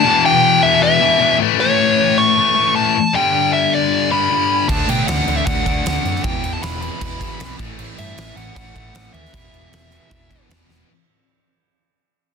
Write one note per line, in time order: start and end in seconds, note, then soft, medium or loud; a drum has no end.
0.00 0.99 E2 loud
0.00 0.25 A5 loud
0.05 1.00 B2 loud
0.05 0.99 E3 loud
0.26 0.61 G5 loud
0.63 0.82 E5 loud
0.83 1.36 E5 loud
1.00 1.17 E2 medium
1.00 1.19 B2 medium
1.00 1.19 E3 medium
1.18 1.37 E2 medium
1.18 1.38 B2 medium
1.18 1.39 E3 loud
1.39 2.34 A2 loud
1.39 2.36 E3 medium
1.39 2.37 A3 loud
1.60 2.19 C#5 loud
2.18 2.75 C#6 loud
2.35 2.54 A2 medium
2.35 2.55 E3 medium
2.35 2.54 A3 medium
2.55 2.95 A2 medium
2.55 2.94 E3 medium
2.55 2.93 A3 medium
2.76 3.15 A5 loud
3.14 4.10 G2 medium
3.14 4.10 D3 loud
3.14 4.09 G3 loud
3.14 3.53 G5 loud
3.53 3.73 E5 loud
3.74 4.09 D5 medium
4.10 4.28 G2 medium
4.10 4.30 D3 medium
4.10 4.29 G3 medium
4.10 4.69 B5 loud
4.30 4.67 G2 medium
4.30 4.67 D3 medium
4.30 4.69 G3 loud
4.68 4.81 D2 loud
4.68 4.86 D3 loud
4.68 4.87 A3 loud
4.68 4.87 D4 loud
4.68 4.89 A5 loud
4.68 kick loud
4.68 crash medium
4.87 5.01 B2 loud
4.87 5.07 D3 medium
4.87 5.07 A3 loud
4.87 5.08 D4 loud
4.87 5.07 G5 medium
4.87 crash medium
5.07 5.20 D2 loud
5.07 5.26 D3 medium
5.07 5.27 A3 loud
5.07 5.28 D4 loud
5.07 5.37 F#5 loud
5.07 snare loud
5.07 crash medium
5.27 5.40 D2 loud
5.27 5.47 D3 medium
5.27 5.47 A3 medium
5.27 5.48 D4 medium
5.27 crash medium
5.37 5.46 E5 medium
5.46 5.59 D2 loud
5.46 5.65 D3 loud
5.46 5.66 A3 loud
5.46 5.67 D4 loud
5.46 6.23 F#5 loud
5.46 kick loud
5.46 crash medium
5.66 5.79 D2 medium
5.66 5.85 D3 medium
5.66 5.86 A3 medium
5.66 5.87 D4 loud
5.66 kick medium
5.66 crash medium
5.85 5.98 D2 loud
5.85 6.03 D3 loud
5.85 6.04 A3 loud
5.85 6.05 D4 loud
5.85 snare loud
5.85 crash medium
6.04 6.17 F#2 medium
6.04 6.23 D3 medium
6.04 6.23 A3 medium
6.04 6.23 D4 loud
6.04 crash medium
6.16 snare soft
6.24 6.36 E1 loud
6.24 6.42 E2 medium
6.24 6.43 B2 loud
6.24 6.44 E3 loud
6.24 6.51 G5 loud
6.24 kick loud
6.24 crash medium
6.43 6.56 E1 medium
6.43 6.61 E2 medium
6.43 6.62 B2 loud
6.43 6.63 E3 loud
6.43 crash medium
6.53 6.62 A5 medium
6.62 6.87 E1 loud
6.62 6.80 E2 loud
6.62 6.81 B2 loud
6.62 6.82 E3 loud
6.62 6.80 B5 loud
6.62 snare loud
6.62 crash medium
6.81 6.99 E2 medium
6.81 7.00 B2 medium
6.81 7.01 E3 medium
6.81 7.55 B5 medium
6.81 crash medium
7.00 7.26 E1 loud
7.00 7.18 E2 medium
7.00 7.19 B2 loud
7.00 7.20 E3 loud
7.00 kick loud
7.00 crash medium
7.20 7.39 E2 medium
7.20 7.39 B2 medium
7.20 7.40 E3 medium
7.20 kick medium
7.20 crash medium
7.25 7.38 E2 medium
7.40 7.53 B1 loud
7.40 7.58 E2 loud
7.40 7.58 B2 loud
7.40 7.58 E3 loud
7.40 snare loud
7.40 crash loud
7.58 7.72 A1 medium
7.58 7.77 A2 medium
7.58 7.78 E3 loud
7.58 7.78 A3 loud
7.58 kick loud
7.58 crash medium
7.78 7.91 A1 loud
7.78 7.96 A2 loud
7.78 7.97 E3 loud
7.78 7.97 A3 loud
7.78 crash medium
7.97 8.11 G2 loud
7.97 8.15 A2 medium
7.97 8.17 E3 loud
7.97 8.17 A3 loud
7.97 8.35 E5 loud
7.97 crash medium
8.17 8.30 A1 loud
8.17 8.36 A2 loud
8.17 8.37 E3 loud
8.17 8.37 A3 loud
8.17 snare loud
8.17 crash loud
8.36 8.49 A1 loud
8.36 8.54 A2 medium
8.36 8.55 E3 medium
8.36 8.55 A3 loud
8.36 8.56 F#5 loud
8.36 crash medium
8.55 8.69 A1 loud
8.55 8.73 A2 loud
8.55 8.74 E3 loud
8.55 8.75 A3 loud
8.55 8.75 F#5 loud
8.55 kick loud
8.55 crash medium
8.75 8.88 A1 medium
8.75 8.92 A2 medium
8.75 8.94 E3 medium
8.75 8.94 A3 medium
8.75 9.13 F#5 loud
8.75 kick medium
8.75 crash medium
8.94 9.07 A1 loud
8.94 9.12 A2 loud
8.94 9.13 E3 loud
8.94 9.13 A3 loud
8.94 snare loud
8.94 crash medium
9.13 9.26 D#2 medium
9.13 9.32 A2 medium
9.13 9.33 E3 loud
9.13 9.33 A3 medium
9.13 10.46 E5 medium
9.13 crash medium
9.25 snare soft
9.33 9.46 E1 loud
9.33 9.50 E2 loud
9.33 9.51 B2 loud
9.33 9.51 E3 loud
9.33 kick loud
9.33 crash medium
9.51 9.65 E1 loud
9.51 9.70 E2 medium
9.51 9.71 B2 loud
9.51 9.71 E3 loud
9.51 crash medium
9.71 9.97 E1 loud
9.71 9.90 E2 loud
9.71 9.91 B2 loud
9.71 9.91 E3 loud
9.71 snare loud
9.71 crash medium
9.91 10.09 E2 medium
9.91 10.09 B2 medium
9.91 10.10 E3 medium
9.91 crash medium
10.10 10.36 E1 loud
10.10 10.29 E2 loud
10.10 10.29 B2 loud
10.10 10.30 E3 loud
10.10 kick loud
10.10 crash medium
10.30 10.48 E2 medium
10.30 10.49 B2 medium
10.30 10.50 E3 medium
10.30 kick medium
10.30 crash medium
10.49 10.62 E1 loud
10.49 10.66 E2 loud
10.49 10.67 B2 loud
10.49 10.68 E3 loud
10.49 snare loud
10.49 crash medium
10.67 10.81 E1 medium
10.67 10.87 E2 medium
10.67 10.87 B2 medium
10.67 10.87 E3 loud
10.67 snare medium